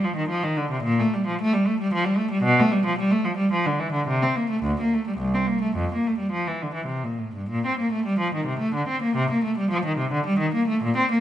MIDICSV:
0, 0, Header, 1, 2, 480
1, 0, Start_track
1, 0, Key_signature, -1, "major"
1, 0, Tempo, 536193
1, 773, Time_signature, 3, 2, 24, 8
1, 3647, Tempo, 560224
1, 5087, Tempo, 581395
1, 6537, Key_signature, -2, "major"
1, 7007, Tempo, 546448
1, 9750, End_track
2, 0, Start_track
2, 0, Title_t, "Cello"
2, 0, Program_c, 0, 42
2, 37, Note_on_c, 0, 53, 56
2, 145, Note_on_c, 0, 51, 60
2, 159, Note_off_c, 0, 53, 0
2, 259, Note_on_c, 0, 53, 65
2, 270, Note_off_c, 0, 51, 0
2, 387, Note_on_c, 0, 51, 60
2, 388, Note_off_c, 0, 53, 0
2, 506, Note_on_c, 0, 50, 57
2, 516, Note_off_c, 0, 51, 0
2, 635, Note_on_c, 0, 48, 62
2, 639, Note_off_c, 0, 50, 0
2, 743, Note_on_c, 0, 46, 77
2, 764, Note_off_c, 0, 48, 0
2, 879, Note_off_c, 0, 46, 0
2, 889, Note_on_c, 0, 57, 66
2, 1014, Note_off_c, 0, 57, 0
2, 1018, Note_on_c, 0, 55, 58
2, 1136, Note_on_c, 0, 53, 59
2, 1138, Note_off_c, 0, 55, 0
2, 1253, Note_off_c, 0, 53, 0
2, 1265, Note_on_c, 0, 57, 76
2, 1369, Note_on_c, 0, 55, 65
2, 1377, Note_off_c, 0, 57, 0
2, 1490, Note_on_c, 0, 57, 63
2, 1491, Note_off_c, 0, 55, 0
2, 1610, Note_off_c, 0, 57, 0
2, 1611, Note_on_c, 0, 55, 65
2, 1727, Note_off_c, 0, 55, 0
2, 1733, Note_on_c, 0, 53, 68
2, 1832, Note_on_c, 0, 55, 63
2, 1847, Note_off_c, 0, 53, 0
2, 1941, Note_on_c, 0, 57, 65
2, 1957, Note_off_c, 0, 55, 0
2, 2069, Note_on_c, 0, 55, 64
2, 2071, Note_off_c, 0, 57, 0
2, 2176, Note_on_c, 0, 47, 79
2, 2191, Note_off_c, 0, 55, 0
2, 2304, Note_off_c, 0, 47, 0
2, 2317, Note_on_c, 0, 57, 69
2, 2433, Note_on_c, 0, 55, 61
2, 2437, Note_off_c, 0, 57, 0
2, 2554, Note_off_c, 0, 55, 0
2, 2559, Note_on_c, 0, 53, 64
2, 2671, Note_on_c, 0, 55, 72
2, 2674, Note_off_c, 0, 53, 0
2, 2786, Note_on_c, 0, 57, 62
2, 2790, Note_off_c, 0, 55, 0
2, 2902, Note_on_c, 0, 53, 61
2, 2909, Note_off_c, 0, 57, 0
2, 3016, Note_on_c, 0, 55, 64
2, 3027, Note_off_c, 0, 53, 0
2, 3141, Note_off_c, 0, 55, 0
2, 3153, Note_on_c, 0, 53, 65
2, 3271, Note_off_c, 0, 53, 0
2, 3274, Note_on_c, 0, 50, 57
2, 3395, Note_off_c, 0, 50, 0
2, 3396, Note_on_c, 0, 52, 62
2, 3515, Note_on_c, 0, 50, 58
2, 3519, Note_off_c, 0, 52, 0
2, 3641, Note_off_c, 0, 50, 0
2, 3649, Note_on_c, 0, 48, 72
2, 3766, Note_off_c, 0, 48, 0
2, 3775, Note_on_c, 0, 60, 63
2, 3890, Note_off_c, 0, 60, 0
2, 3891, Note_on_c, 0, 58, 58
2, 4006, Note_off_c, 0, 58, 0
2, 4012, Note_on_c, 0, 57, 59
2, 4123, Note_off_c, 0, 57, 0
2, 4123, Note_on_c, 0, 38, 67
2, 4238, Note_off_c, 0, 38, 0
2, 4275, Note_on_c, 0, 58, 49
2, 4376, Note_off_c, 0, 58, 0
2, 4388, Note_on_c, 0, 57, 52
2, 4492, Note_off_c, 0, 57, 0
2, 4508, Note_on_c, 0, 55, 48
2, 4590, Note_on_c, 0, 36, 59
2, 4610, Note_off_c, 0, 55, 0
2, 4712, Note_off_c, 0, 36, 0
2, 4735, Note_on_c, 0, 60, 47
2, 4841, Note_on_c, 0, 58, 48
2, 4847, Note_off_c, 0, 60, 0
2, 4962, Note_off_c, 0, 58, 0
2, 4966, Note_on_c, 0, 57, 46
2, 5084, Note_off_c, 0, 57, 0
2, 5094, Note_on_c, 0, 41, 56
2, 5207, Note_off_c, 0, 41, 0
2, 5242, Note_on_c, 0, 58, 44
2, 5343, Note_off_c, 0, 58, 0
2, 5348, Note_on_c, 0, 57, 41
2, 5439, Note_on_c, 0, 55, 42
2, 5456, Note_off_c, 0, 57, 0
2, 5553, Note_on_c, 0, 53, 50
2, 5558, Note_off_c, 0, 55, 0
2, 5674, Note_off_c, 0, 53, 0
2, 5680, Note_on_c, 0, 52, 43
2, 5799, Note_off_c, 0, 52, 0
2, 5801, Note_on_c, 0, 50, 39
2, 5906, Note_on_c, 0, 52, 40
2, 5920, Note_off_c, 0, 50, 0
2, 6005, Note_on_c, 0, 48, 42
2, 6030, Note_off_c, 0, 52, 0
2, 6142, Note_off_c, 0, 48, 0
2, 6145, Note_on_c, 0, 46, 37
2, 6268, Note_on_c, 0, 45, 38
2, 6279, Note_off_c, 0, 46, 0
2, 6404, Note_off_c, 0, 45, 0
2, 6409, Note_on_c, 0, 43, 40
2, 6523, Note_on_c, 0, 46, 61
2, 6533, Note_off_c, 0, 43, 0
2, 6649, Note_off_c, 0, 46, 0
2, 6662, Note_on_c, 0, 60, 54
2, 6767, Note_on_c, 0, 58, 52
2, 6775, Note_off_c, 0, 60, 0
2, 6875, Note_on_c, 0, 57, 53
2, 6884, Note_off_c, 0, 58, 0
2, 6989, Note_on_c, 0, 55, 62
2, 6995, Note_off_c, 0, 57, 0
2, 7106, Note_on_c, 0, 53, 51
2, 7114, Note_off_c, 0, 55, 0
2, 7234, Note_off_c, 0, 53, 0
2, 7242, Note_on_c, 0, 51, 46
2, 7342, Note_on_c, 0, 48, 51
2, 7362, Note_off_c, 0, 51, 0
2, 7461, Note_on_c, 0, 57, 61
2, 7472, Note_off_c, 0, 48, 0
2, 7590, Note_off_c, 0, 57, 0
2, 7595, Note_on_c, 0, 50, 49
2, 7707, Note_on_c, 0, 60, 55
2, 7717, Note_off_c, 0, 50, 0
2, 7831, Note_off_c, 0, 60, 0
2, 7833, Note_on_c, 0, 58, 56
2, 7952, Note_off_c, 0, 58, 0
2, 7955, Note_on_c, 0, 48, 69
2, 8072, Note_off_c, 0, 48, 0
2, 8086, Note_on_c, 0, 58, 56
2, 8196, Note_off_c, 0, 58, 0
2, 8202, Note_on_c, 0, 57, 53
2, 8313, Note_off_c, 0, 57, 0
2, 8320, Note_on_c, 0, 55, 54
2, 8431, Note_off_c, 0, 55, 0
2, 8433, Note_on_c, 0, 53, 66
2, 8547, Note_off_c, 0, 53, 0
2, 8564, Note_on_c, 0, 51, 56
2, 8673, Note_off_c, 0, 51, 0
2, 8674, Note_on_c, 0, 48, 52
2, 8788, Note_off_c, 0, 48, 0
2, 8794, Note_on_c, 0, 50, 59
2, 8907, Note_off_c, 0, 50, 0
2, 8923, Note_on_c, 0, 55, 67
2, 9032, Note_off_c, 0, 55, 0
2, 9036, Note_on_c, 0, 51, 56
2, 9150, Note_off_c, 0, 51, 0
2, 9167, Note_on_c, 0, 58, 63
2, 9278, Note_off_c, 0, 58, 0
2, 9291, Note_on_c, 0, 57, 62
2, 9404, Note_off_c, 0, 57, 0
2, 9419, Note_on_c, 0, 46, 76
2, 9530, Note_off_c, 0, 46, 0
2, 9543, Note_on_c, 0, 60, 66
2, 9652, Note_off_c, 0, 60, 0
2, 9670, Note_on_c, 0, 58, 63
2, 9750, Note_off_c, 0, 58, 0
2, 9750, End_track
0, 0, End_of_file